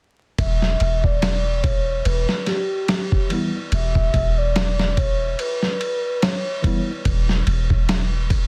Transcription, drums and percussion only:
0, 0, Header, 1, 2, 480
1, 0, Start_track
1, 0, Tempo, 833333
1, 222, Time_signature, 4, 2, 24, 8
1, 4879, End_track
2, 0, Start_track
2, 0, Title_t, "Drums"
2, 222, Note_on_c, 9, 36, 99
2, 222, Note_on_c, 9, 51, 73
2, 279, Note_off_c, 9, 51, 0
2, 280, Note_off_c, 9, 36, 0
2, 359, Note_on_c, 9, 38, 38
2, 417, Note_off_c, 9, 38, 0
2, 461, Note_on_c, 9, 51, 59
2, 519, Note_off_c, 9, 51, 0
2, 598, Note_on_c, 9, 36, 81
2, 655, Note_off_c, 9, 36, 0
2, 704, Note_on_c, 9, 51, 78
2, 706, Note_on_c, 9, 38, 92
2, 761, Note_off_c, 9, 51, 0
2, 763, Note_off_c, 9, 38, 0
2, 943, Note_on_c, 9, 36, 82
2, 943, Note_on_c, 9, 51, 58
2, 1000, Note_off_c, 9, 51, 0
2, 1001, Note_off_c, 9, 36, 0
2, 1183, Note_on_c, 9, 51, 78
2, 1240, Note_off_c, 9, 51, 0
2, 1318, Note_on_c, 9, 38, 48
2, 1376, Note_off_c, 9, 38, 0
2, 1420, Note_on_c, 9, 51, 54
2, 1422, Note_on_c, 9, 38, 36
2, 1477, Note_off_c, 9, 51, 0
2, 1480, Note_off_c, 9, 38, 0
2, 1661, Note_on_c, 9, 51, 80
2, 1663, Note_on_c, 9, 38, 104
2, 1718, Note_off_c, 9, 51, 0
2, 1721, Note_off_c, 9, 38, 0
2, 1797, Note_on_c, 9, 36, 86
2, 1854, Note_off_c, 9, 36, 0
2, 1901, Note_on_c, 9, 51, 61
2, 1959, Note_off_c, 9, 51, 0
2, 2142, Note_on_c, 9, 51, 78
2, 2200, Note_off_c, 9, 51, 0
2, 2277, Note_on_c, 9, 36, 82
2, 2335, Note_off_c, 9, 36, 0
2, 2383, Note_on_c, 9, 36, 82
2, 2384, Note_on_c, 9, 51, 57
2, 2441, Note_off_c, 9, 36, 0
2, 2441, Note_off_c, 9, 51, 0
2, 2625, Note_on_c, 9, 51, 74
2, 2627, Note_on_c, 9, 38, 98
2, 2682, Note_off_c, 9, 51, 0
2, 2684, Note_off_c, 9, 38, 0
2, 2761, Note_on_c, 9, 38, 50
2, 2819, Note_off_c, 9, 38, 0
2, 2864, Note_on_c, 9, 36, 84
2, 2864, Note_on_c, 9, 51, 61
2, 2921, Note_off_c, 9, 36, 0
2, 2921, Note_off_c, 9, 51, 0
2, 3104, Note_on_c, 9, 51, 75
2, 3162, Note_off_c, 9, 51, 0
2, 3241, Note_on_c, 9, 38, 36
2, 3298, Note_off_c, 9, 38, 0
2, 3345, Note_on_c, 9, 51, 57
2, 3403, Note_off_c, 9, 51, 0
2, 3585, Note_on_c, 9, 51, 83
2, 3588, Note_on_c, 9, 38, 106
2, 3643, Note_off_c, 9, 51, 0
2, 3645, Note_off_c, 9, 38, 0
2, 3824, Note_on_c, 9, 36, 82
2, 3825, Note_on_c, 9, 51, 60
2, 3881, Note_off_c, 9, 36, 0
2, 3883, Note_off_c, 9, 51, 0
2, 4062, Note_on_c, 9, 51, 80
2, 4063, Note_on_c, 9, 36, 96
2, 4120, Note_off_c, 9, 36, 0
2, 4120, Note_off_c, 9, 51, 0
2, 4200, Note_on_c, 9, 38, 39
2, 4258, Note_off_c, 9, 38, 0
2, 4302, Note_on_c, 9, 51, 61
2, 4360, Note_off_c, 9, 51, 0
2, 4437, Note_on_c, 9, 36, 83
2, 4494, Note_off_c, 9, 36, 0
2, 4543, Note_on_c, 9, 51, 79
2, 4546, Note_on_c, 9, 38, 101
2, 4601, Note_off_c, 9, 51, 0
2, 4603, Note_off_c, 9, 38, 0
2, 4782, Note_on_c, 9, 36, 86
2, 4783, Note_on_c, 9, 51, 64
2, 4840, Note_off_c, 9, 36, 0
2, 4840, Note_off_c, 9, 51, 0
2, 4879, End_track
0, 0, End_of_file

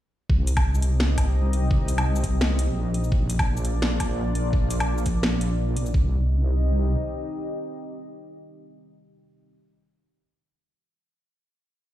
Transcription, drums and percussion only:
0, 0, Header, 1, 2, 480
1, 0, Start_track
1, 0, Key_signature, -3, "minor"
1, 0, Tempo, 352941
1, 403, Time_signature, 4, 2, 24, 8
1, 16230, End_track
2, 0, Start_track
2, 0, Title_t, "Drums"
2, 402, Note_on_c, 9, 36, 117
2, 538, Note_off_c, 9, 36, 0
2, 644, Note_on_c, 9, 42, 81
2, 644, Note_on_c, 9, 82, 68
2, 772, Note_off_c, 9, 42, 0
2, 772, Note_on_c, 9, 42, 36
2, 772, Note_on_c, 9, 77, 82
2, 774, Note_on_c, 9, 36, 105
2, 780, Note_off_c, 9, 82, 0
2, 908, Note_off_c, 9, 42, 0
2, 908, Note_off_c, 9, 77, 0
2, 910, Note_off_c, 9, 36, 0
2, 1015, Note_on_c, 9, 82, 64
2, 1121, Note_off_c, 9, 82, 0
2, 1121, Note_on_c, 9, 42, 71
2, 1121, Note_on_c, 9, 82, 36
2, 1257, Note_off_c, 9, 42, 0
2, 1257, Note_off_c, 9, 82, 0
2, 1360, Note_on_c, 9, 38, 118
2, 1496, Note_off_c, 9, 38, 0
2, 1601, Note_on_c, 9, 42, 86
2, 1601, Note_on_c, 9, 77, 40
2, 1602, Note_on_c, 9, 36, 60
2, 1737, Note_off_c, 9, 42, 0
2, 1737, Note_off_c, 9, 77, 0
2, 1738, Note_off_c, 9, 36, 0
2, 2083, Note_on_c, 9, 42, 68
2, 2219, Note_off_c, 9, 42, 0
2, 2322, Note_on_c, 9, 36, 125
2, 2458, Note_off_c, 9, 36, 0
2, 2562, Note_on_c, 9, 42, 83
2, 2562, Note_on_c, 9, 82, 64
2, 2693, Note_off_c, 9, 42, 0
2, 2693, Note_on_c, 9, 42, 38
2, 2693, Note_on_c, 9, 77, 78
2, 2698, Note_off_c, 9, 82, 0
2, 2829, Note_off_c, 9, 42, 0
2, 2829, Note_off_c, 9, 77, 0
2, 2934, Note_on_c, 9, 82, 63
2, 3042, Note_off_c, 9, 82, 0
2, 3042, Note_on_c, 9, 36, 64
2, 3042, Note_on_c, 9, 42, 71
2, 3042, Note_on_c, 9, 82, 36
2, 3178, Note_off_c, 9, 36, 0
2, 3178, Note_off_c, 9, 42, 0
2, 3178, Note_off_c, 9, 82, 0
2, 3279, Note_on_c, 9, 38, 121
2, 3415, Note_off_c, 9, 38, 0
2, 3520, Note_on_c, 9, 42, 82
2, 3656, Note_off_c, 9, 42, 0
2, 4003, Note_on_c, 9, 42, 67
2, 4135, Note_on_c, 9, 82, 63
2, 4139, Note_off_c, 9, 42, 0
2, 4242, Note_on_c, 9, 36, 127
2, 4271, Note_off_c, 9, 82, 0
2, 4378, Note_off_c, 9, 36, 0
2, 4483, Note_on_c, 9, 42, 84
2, 4483, Note_on_c, 9, 82, 65
2, 4613, Note_off_c, 9, 42, 0
2, 4613, Note_on_c, 9, 42, 36
2, 4613, Note_on_c, 9, 77, 77
2, 4614, Note_on_c, 9, 36, 108
2, 4619, Note_off_c, 9, 82, 0
2, 4749, Note_off_c, 9, 42, 0
2, 4749, Note_off_c, 9, 77, 0
2, 4750, Note_off_c, 9, 36, 0
2, 4853, Note_on_c, 9, 82, 63
2, 4959, Note_off_c, 9, 82, 0
2, 4959, Note_on_c, 9, 42, 68
2, 4959, Note_on_c, 9, 82, 36
2, 5095, Note_off_c, 9, 42, 0
2, 5095, Note_off_c, 9, 82, 0
2, 5198, Note_on_c, 9, 38, 124
2, 5334, Note_off_c, 9, 38, 0
2, 5441, Note_on_c, 9, 36, 65
2, 5441, Note_on_c, 9, 42, 83
2, 5441, Note_on_c, 9, 77, 37
2, 5577, Note_off_c, 9, 36, 0
2, 5577, Note_off_c, 9, 42, 0
2, 5577, Note_off_c, 9, 77, 0
2, 5919, Note_on_c, 9, 42, 69
2, 6055, Note_off_c, 9, 42, 0
2, 6161, Note_on_c, 9, 36, 127
2, 6297, Note_off_c, 9, 36, 0
2, 6399, Note_on_c, 9, 42, 82
2, 6399, Note_on_c, 9, 82, 66
2, 6533, Note_off_c, 9, 42, 0
2, 6533, Note_on_c, 9, 42, 37
2, 6533, Note_on_c, 9, 77, 73
2, 6535, Note_off_c, 9, 82, 0
2, 6669, Note_off_c, 9, 42, 0
2, 6669, Note_off_c, 9, 77, 0
2, 6771, Note_on_c, 9, 82, 64
2, 6878, Note_off_c, 9, 82, 0
2, 6878, Note_on_c, 9, 42, 64
2, 6878, Note_on_c, 9, 82, 36
2, 6882, Note_on_c, 9, 36, 67
2, 7014, Note_off_c, 9, 42, 0
2, 7014, Note_off_c, 9, 82, 0
2, 7018, Note_off_c, 9, 36, 0
2, 7115, Note_on_c, 9, 38, 123
2, 7251, Note_off_c, 9, 38, 0
2, 7360, Note_on_c, 9, 42, 79
2, 7496, Note_off_c, 9, 42, 0
2, 7841, Note_on_c, 9, 42, 67
2, 7971, Note_on_c, 9, 82, 63
2, 7977, Note_off_c, 9, 42, 0
2, 8082, Note_on_c, 9, 36, 113
2, 8107, Note_off_c, 9, 82, 0
2, 8218, Note_off_c, 9, 36, 0
2, 16230, End_track
0, 0, End_of_file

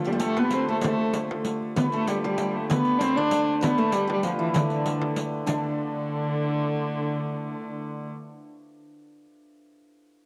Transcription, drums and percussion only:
0, 0, Header, 1, 3, 480
1, 0, Start_track
1, 0, Tempo, 310398
1, 1293, Time_signature, 6, 3, 24, 8
1, 7522, Tempo, 303951
1, 16040, End_track
2, 0, Start_track
2, 0, Title_t, "Frame drum"
2, 336, Note_on_c, 9, 64, 29
2, 491, Note_off_c, 9, 64, 0
2, 568, Note_on_c, 9, 64, 73
2, 723, Note_off_c, 9, 64, 0
2, 823, Note_on_c, 9, 64, 29
2, 978, Note_off_c, 9, 64, 0
2, 1305, Note_on_c, 9, 64, 84
2, 1460, Note_off_c, 9, 64, 0
2, 1789, Note_on_c, 9, 64, 27
2, 1943, Note_off_c, 9, 64, 0
2, 2025, Note_on_c, 9, 64, 68
2, 2179, Note_off_c, 9, 64, 0
2, 2509, Note_on_c, 9, 64, 28
2, 2664, Note_off_c, 9, 64, 0
2, 2742, Note_on_c, 9, 64, 79
2, 2896, Note_off_c, 9, 64, 0
2, 3230, Note_on_c, 9, 64, 28
2, 3385, Note_off_c, 9, 64, 0
2, 3470, Note_on_c, 9, 64, 70
2, 3624, Note_off_c, 9, 64, 0
2, 3700, Note_on_c, 9, 64, 30
2, 3854, Note_off_c, 9, 64, 0
2, 4189, Note_on_c, 9, 64, 97
2, 4344, Note_off_c, 9, 64, 0
2, 4681, Note_on_c, 9, 64, 30
2, 4835, Note_off_c, 9, 64, 0
2, 4921, Note_on_c, 9, 64, 71
2, 5076, Note_off_c, 9, 64, 0
2, 5163, Note_on_c, 9, 64, 29
2, 5317, Note_off_c, 9, 64, 0
2, 5624, Note_on_c, 9, 64, 87
2, 5778, Note_off_c, 9, 64, 0
2, 6092, Note_on_c, 9, 64, 30
2, 6246, Note_off_c, 9, 64, 0
2, 6335, Note_on_c, 9, 64, 74
2, 6490, Note_off_c, 9, 64, 0
2, 6584, Note_on_c, 9, 64, 32
2, 6739, Note_off_c, 9, 64, 0
2, 7049, Note_on_c, 9, 64, 102
2, 7203, Note_off_c, 9, 64, 0
2, 7286, Note_on_c, 9, 64, 34
2, 7441, Note_off_c, 9, 64, 0
2, 7761, Note_on_c, 9, 64, 76
2, 7919, Note_off_c, 9, 64, 0
2, 8263, Note_on_c, 9, 64, 32
2, 8421, Note_off_c, 9, 64, 0
2, 8502, Note_on_c, 9, 64, 80
2, 8660, Note_off_c, 9, 64, 0
2, 16040, End_track
3, 0, Start_track
3, 0, Title_t, "Riq"
3, 70, Note_on_c, 9, 54, 26
3, 224, Note_off_c, 9, 54, 0
3, 303, Note_on_c, 9, 54, 82
3, 458, Note_off_c, 9, 54, 0
3, 781, Note_on_c, 9, 54, 73
3, 936, Note_off_c, 9, 54, 0
3, 1258, Note_on_c, 9, 54, 82
3, 1413, Note_off_c, 9, 54, 0
3, 1754, Note_on_c, 9, 54, 80
3, 1909, Note_off_c, 9, 54, 0
3, 2235, Note_on_c, 9, 54, 74
3, 2390, Note_off_c, 9, 54, 0
3, 2727, Note_on_c, 9, 54, 75
3, 2882, Note_off_c, 9, 54, 0
3, 2970, Note_on_c, 9, 54, 24
3, 3125, Note_off_c, 9, 54, 0
3, 3209, Note_on_c, 9, 54, 77
3, 3363, Note_off_c, 9, 54, 0
3, 3677, Note_on_c, 9, 54, 75
3, 3832, Note_off_c, 9, 54, 0
3, 4170, Note_on_c, 9, 54, 75
3, 4325, Note_off_c, 9, 54, 0
3, 4404, Note_on_c, 9, 54, 24
3, 4559, Note_off_c, 9, 54, 0
3, 4648, Note_on_c, 9, 54, 78
3, 4803, Note_off_c, 9, 54, 0
3, 5122, Note_on_c, 9, 54, 79
3, 5277, Note_off_c, 9, 54, 0
3, 5605, Note_on_c, 9, 54, 81
3, 5760, Note_off_c, 9, 54, 0
3, 5842, Note_on_c, 9, 54, 24
3, 5997, Note_off_c, 9, 54, 0
3, 6066, Note_on_c, 9, 54, 77
3, 6221, Note_off_c, 9, 54, 0
3, 6543, Note_on_c, 9, 54, 70
3, 6698, Note_off_c, 9, 54, 0
3, 7026, Note_on_c, 9, 54, 75
3, 7180, Note_off_c, 9, 54, 0
3, 7271, Note_on_c, 9, 54, 22
3, 7426, Note_off_c, 9, 54, 0
3, 7511, Note_on_c, 9, 54, 70
3, 7668, Note_off_c, 9, 54, 0
3, 7995, Note_on_c, 9, 54, 74
3, 8153, Note_off_c, 9, 54, 0
3, 8481, Note_on_c, 9, 54, 91
3, 8639, Note_off_c, 9, 54, 0
3, 16040, End_track
0, 0, End_of_file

